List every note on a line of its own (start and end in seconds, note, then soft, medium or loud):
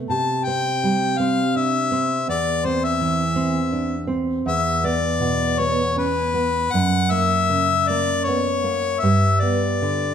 0.00 0.10 A3 soft
0.10 2.24 C3 soft
0.10 0.46 A5 medium
0.45 1.05 C4 soft
0.45 1.20 G5 medium
0.84 1.41 G3 soft
1.18 1.77 C4 soft
1.18 1.58 F5 medium
1.56 1.92 D4 soft
1.56 2.29 E5 medium
1.92 2.29 C4 soft
2.28 4.44 E2 soft
2.28 2.67 D5 medium
2.65 3.23 C4 soft
2.65 2.86 C5 medium
2.84 4.11 E5 medium
3.01 3.59 E3 soft
3.36 3.95 C4 soft
3.73 4.10 D4 soft
4.07 4.47 C4 soft
4.46 6.68 E2 soft
4.46 4.88 E5 medium
4.84 5.44 B3 soft
4.84 5.61 D5 medium
5.20 5.81 B2 soft
5.59 6.19 B3 soft
5.59 5.97 C#5 medium
5.96 6.34 C#4 soft
5.96 6.74 B4 medium
6.34 6.73 B3 soft
6.73 8.99 F#2 soft
6.73 7.13 F#5 medium
7.11 7.74 A#3 soft
7.11 7.90 E5 medium
7.50 8.12 C#3 soft
7.88 8.50 A#3 soft
7.88 8.26 D5 medium
8.24 8.65 B3 soft
8.24 9.01 C#5 medium
8.64 9.03 A#3 soft
9.00 10.14 G2 soft
9.00 9.42 E5 medium
9.40 10.04 B3 soft
9.40 10.14 D5 medium
9.82 10.14 D3 soft